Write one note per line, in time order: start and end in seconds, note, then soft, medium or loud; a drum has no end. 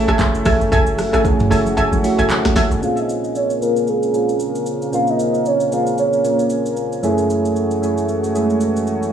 0.00 2.78 F#3 medium
0.00 1.13 A3 loud
0.00 2.78 A3 medium
0.00 1.13 C#4 loud
0.00 0.70 E4 loud
0.00 1.14 E4 loud
0.00 1.14 G#4 loud
0.00 0.82 A4 loud
0.08 0.19 G#1 medium
0.08 0.18 A4 medium
0.08 0.18 E5 medium
0.08 0.18 G#5 medium
0.08 cross-stick loud
0.08 shaker medium
0.19 0.44 F#1 loud
0.19 kick loud
0.19 clap loud
0.19 high conga medium
0.19 low conga medium
0.19 shaker medium
0.35 shaker medium
0.45 0.60 G#1 medium
0.45 0.59 A4 medium
0.45 0.60 E5 medium
0.45 0.60 G#5 medium
0.45 kick loud
0.45 cross-stick loud
0.45 open hi-hat medium
0.45 high conga medium
0.45 shaker medium
0.61 0.71 F#1 loud
0.61 shaker medium
0.72 1.12 F#1 loud
0.72 2.80 F#4 medium
0.72 1.10 A4 loud
0.72 1.10 E5 medium
0.72 1.10 G#5 loud
0.72 kick loud
0.72 low conga medium
0.72 shaker medium
0.87 shaker medium
0.98 cross-stick medium
0.98 open hi-hat medium
0.98 high conga medium
0.98 shaker medium
1.13 1.49 G#1 medium
1.13 1.44 A3 loud
1.13 1.44 C#4 medium
1.13 1.44 E4 medium
1.13 1.45 G#4 loud
1.13 1.48 A4 medium
1.13 1.48 E5 medium
1.13 1.48 G#5 medium
1.13 cross-stick loud
1.13 shaker medium
1.25 kick loud
1.25 low conga medium
1.25 shaker medium
1.40 mid tom loud
1.40 high conga medium
1.40 shaker medium
1.50 1.76 F#1 loud
1.50 1.94 A3 medium
1.50 1.95 C#4 medium
1.50 1.95 E4 medium
1.50 1.95 G#4 medium
1.50 1.75 A4 medium
1.50 1.75 E5 medium
1.50 1.76 G#5 medium
1.50 open hi-hat soft
1.50 low conga medium
1.50 shaker medium
1.66 high conga medium
1.66 shaker medium
1.77 1.92 F#1 loud
1.77 2.15 A4 loud
1.77 2.15 E5 medium
1.77 2.15 G#5 loud
1.77 shaker medium
1.93 2.03 G#1 medium
1.93 high conga medium
1.93 shaker medium
2.03 2.68 A3 medium
2.03 2.68 C#4 medium
2.03 2.69 E4 medium
2.03 2.69 F#4 loud
2.03 open hi-hat medium
2.03 high conga medium
2.03 shaker medium
2.18 2.29 F#1 loud
2.18 2.29 A4 medium
2.18 2.29 E5 medium
2.18 2.29 G#5 medium
2.18 shaker medium
2.30 clap loud
2.30 high conga medium
2.30 low conga medium
2.30 shaker medium
2.45 2.55 A1 medium
2.45 cross-stick loud
2.45 snare medium
2.45 shaker medium
2.56 2.71 G#1 loud
2.56 2.70 A4 medium
2.56 2.70 E5 medium
2.56 2.70 G#5 medium
2.56 cross-stick loud
2.56 snare medium
2.56 open hi-hat medium
2.56 high conga medium
2.56 shaker medium
2.71 2.82 F#1 medium
2.71 shaker soft
2.82 3.47 A#2 medium
2.82 7.00 C#3 medium
2.82 7.00 A#3 medium
2.82 3.47 C4 medium
2.82 3.47 C#4 medium
2.82 3.48 F4 medium
2.82 3.48 G#4 loud
2.82 6.99 A#4 medium
2.82 3.01 F5 loud
2.82 9.12 G#5 medium
2.82 shaker medium
2.97 3.38 D#5 loud
2.97 shaker medium
3.09 shaker medium
3.24 shaker medium
3.35 3.62 C#5 loud
3.35 shaker medium
3.50 shaker medium
3.60 4.05 A#2 medium
3.60 4.05 C4 medium
3.60 4.05 C#4 medium
3.60 4.05 F4 medium
3.60 4.06 G#4 medium
3.60 3.90 A#4 medium
3.60 shaker medium
3.76 shaker soft
3.87 4.67 G#4 medium
3.87 shaker medium
4.03 shaker medium
4.13 4.78 A#2 medium
4.13 4.79 C4 medium
4.13 4.79 C#4 medium
4.13 4.79 F4 medium
4.13 4.79 G#4 medium
4.13 shaker medium
4.29 shaker soft
4.40 shaker medium
4.55 shaker medium
4.66 shaker medium
4.82 shaker soft
4.92 5.57 A#2 medium
4.92 5.58 C4 medium
4.92 5.58 C#4 medium
4.92 5.58 F4 medium
4.92 5.58 A#4 medium
4.92 5.11 F5 loud
4.92 shaker medium
5.07 5.48 D#5 loud
5.07 shaker medium
5.19 shaker medium
5.34 shaker medium
5.46 5.72 C#5 loud
5.46 shaker medium
5.60 shaker medium
5.71 6.15 A#2 medium
5.71 6.16 C4 medium
5.71 6.16 C#4 medium
5.71 6.16 F4 medium
5.71 6.16 G#4 medium
5.71 5.97 F5 loud
5.71 shaker medium
5.87 shaker soft
5.98 6.74 C#5 medium
5.98 shaker medium
6.13 shaker medium
6.24 6.89 A#2 medium
6.24 6.89 A#3 medium
6.24 6.89 C#4 medium
6.24 6.90 F4 medium
6.24 6.90 A#4 medium
6.24 shaker medium
6.39 shaker soft
6.50 shaker medium
6.66 shaker medium
6.77 shaker medium
6.92 shaker soft
7.02 7.68 F#2 loud
7.02 9.12 E3 medium
7.02 7.68 A3 loud
7.02 9.12 A3 medium
7.02 7.68 C#4 loud
7.02 7.68 E4 loud
7.02 9.12 F#4 medium
7.02 7.69 G#4 loud
7.02 shaker medium
7.18 shaker medium
7.30 shaker medium
7.45 shaker medium
7.56 shaker medium
7.71 shaker medium
7.82 8.26 F#2 medium
7.82 8.26 A3 medium
7.82 8.26 C#4 medium
7.82 8.26 E4 medium
7.82 8.27 G#4 loud
7.82 shaker medium
7.97 shaker soft
8.08 shaker medium
8.24 shaker medium
8.34 8.99 F#2 medium
8.34 8.42 G#3 medium
8.34 9.00 C#4 medium
8.34 9.00 E4 medium
8.34 9.00 G#4 medium
8.34 shaker medium
8.41 9.03 A3 medium
8.50 shaker soft
8.61 shaker medium
8.76 shaker medium
8.87 shaker medium
9.03 shaker soft